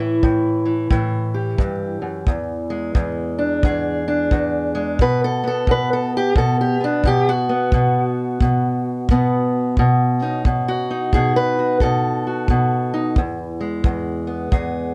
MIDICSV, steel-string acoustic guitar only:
0, 0, Header, 1, 2, 480
1, 0, Start_track
1, 0, Tempo, 680272
1, 1605, Time_signature, 4, 2, 24, 8
1, 10544, End_track
2, 0, Start_track
2, 0, Title_t, "Steel-string acoustic guitar"
2, 0, Program_c, 0, 25
2, 0, Note_on_c, 0, 45, 74
2, 0, Note_on_c, 0, 52, 51
2, 0, Note_on_c, 0, 64, 91
2, 155, Note_off_c, 0, 45, 0
2, 163, Note_on_c, 0, 45, 73
2, 459, Note_off_c, 0, 52, 0
2, 462, Note_on_c, 0, 52, 43
2, 630, Note_off_c, 0, 45, 0
2, 638, Note_on_c, 0, 45, 75
2, 642, Note_off_c, 0, 52, 0
2, 644, Note_on_c, 0, 52, 51
2, 948, Note_on_c, 0, 67, 45
2, 1116, Note_off_c, 0, 45, 0
2, 1119, Note_on_c, 0, 43, 68
2, 1296, Note_off_c, 0, 64, 0
2, 1420, Note_off_c, 0, 43, 0
2, 1424, Note_on_c, 0, 42, 67
2, 1585, Note_off_c, 0, 67, 0
2, 1605, Note_off_c, 0, 42, 0
2, 1607, Note_on_c, 0, 40, 73
2, 1906, Note_on_c, 0, 56, 59
2, 2073, Note_off_c, 0, 40, 0
2, 2082, Note_on_c, 0, 40, 69
2, 2388, Note_on_c, 0, 62, 59
2, 2563, Note_off_c, 0, 40, 0
2, 2570, Note_on_c, 0, 40, 73
2, 2575, Note_on_c, 0, 68, 64
2, 2865, Note_off_c, 0, 62, 0
2, 2877, Note_on_c, 0, 62, 55
2, 3039, Note_off_c, 0, 40, 0
2, 3047, Note_on_c, 0, 40, 72
2, 3342, Note_off_c, 0, 56, 0
2, 3350, Note_on_c, 0, 56, 64
2, 3507, Note_off_c, 0, 68, 0
2, 3510, Note_off_c, 0, 62, 0
2, 3523, Note_off_c, 0, 52, 0
2, 3526, Note_off_c, 0, 40, 0
2, 3528, Note_off_c, 0, 56, 0
2, 3537, Note_on_c, 0, 47, 74
2, 3541, Note_on_c, 0, 71, 84
2, 3693, Note_off_c, 0, 71, 0
2, 3699, Note_on_c, 0, 69, 92
2, 3836, Note_on_c, 0, 59, 47
2, 3852, Note_off_c, 0, 69, 0
2, 3863, Note_on_c, 0, 69, 90
2, 4009, Note_off_c, 0, 47, 0
2, 4012, Note_on_c, 0, 47, 75
2, 4014, Note_off_c, 0, 69, 0
2, 4030, Note_on_c, 0, 71, 104
2, 4178, Note_off_c, 0, 71, 0
2, 4185, Note_on_c, 0, 69, 79
2, 4336, Note_off_c, 0, 69, 0
2, 4353, Note_on_c, 0, 67, 92
2, 4488, Note_off_c, 0, 47, 0
2, 4490, Note_on_c, 0, 47, 75
2, 4499, Note_off_c, 0, 67, 0
2, 4502, Note_on_c, 0, 69, 81
2, 4655, Note_off_c, 0, 69, 0
2, 4663, Note_on_c, 0, 67, 77
2, 4798, Note_off_c, 0, 59, 0
2, 4801, Note_on_c, 0, 59, 43
2, 4816, Note_off_c, 0, 67, 0
2, 4827, Note_on_c, 0, 62, 79
2, 4974, Note_off_c, 0, 47, 0
2, 4977, Note_on_c, 0, 47, 77
2, 4978, Note_off_c, 0, 62, 0
2, 4991, Note_on_c, 0, 67, 94
2, 5140, Note_off_c, 0, 67, 0
2, 5143, Note_on_c, 0, 66, 96
2, 5285, Note_off_c, 0, 59, 0
2, 5287, Note_on_c, 0, 59, 53
2, 5457, Note_off_c, 0, 47, 0
2, 5460, Note_on_c, 0, 47, 71
2, 5937, Note_off_c, 0, 47, 0
2, 5940, Note_on_c, 0, 47, 64
2, 6424, Note_off_c, 0, 47, 0
2, 6427, Note_off_c, 0, 59, 0
2, 6427, Note_on_c, 0, 47, 70
2, 6430, Note_on_c, 0, 59, 52
2, 6899, Note_off_c, 0, 47, 0
2, 6908, Note_on_c, 0, 47, 82
2, 7063, Note_off_c, 0, 66, 0
2, 7214, Note_on_c, 0, 63, 49
2, 7218, Note_off_c, 0, 59, 0
2, 7218, Note_on_c, 0, 61, 100
2, 7364, Note_off_c, 0, 63, 0
2, 7373, Note_off_c, 0, 47, 0
2, 7382, Note_on_c, 0, 47, 68
2, 7539, Note_on_c, 0, 66, 86
2, 7677, Note_off_c, 0, 61, 0
2, 7695, Note_on_c, 0, 63, 51
2, 7860, Note_off_c, 0, 47, 0
2, 7860, Note_on_c, 0, 68, 86
2, 7868, Note_on_c, 0, 47, 73
2, 8015, Note_off_c, 0, 68, 0
2, 8018, Note_on_c, 0, 71, 94
2, 8158, Note_off_c, 0, 66, 0
2, 8177, Note_on_c, 0, 66, 51
2, 8332, Note_off_c, 0, 71, 0
2, 8335, Note_on_c, 0, 69, 82
2, 8340, Note_off_c, 0, 47, 0
2, 8349, Note_on_c, 0, 47, 73
2, 8648, Note_off_c, 0, 66, 0
2, 8656, Note_on_c, 0, 66, 48
2, 8813, Note_off_c, 0, 47, 0
2, 8822, Note_on_c, 0, 47, 78
2, 9119, Note_off_c, 0, 63, 0
2, 9128, Note_on_c, 0, 63, 53
2, 9282, Note_off_c, 0, 63, 0
2, 9286, Note_off_c, 0, 66, 0
2, 9297, Note_off_c, 0, 69, 0
2, 9300, Note_off_c, 0, 47, 0
2, 9300, Note_on_c, 0, 40, 82
2, 9600, Note_on_c, 0, 56, 51
2, 9766, Note_off_c, 0, 40, 0
2, 9775, Note_on_c, 0, 40, 68
2, 10070, Note_on_c, 0, 59, 45
2, 10235, Note_off_c, 0, 40, 0
2, 10244, Note_on_c, 0, 40, 73
2, 10250, Note_on_c, 0, 68, 47
2, 10544, Note_off_c, 0, 40, 0
2, 10544, Note_off_c, 0, 56, 0
2, 10544, Note_off_c, 0, 59, 0
2, 10544, Note_off_c, 0, 68, 0
2, 10544, End_track
0, 0, End_of_file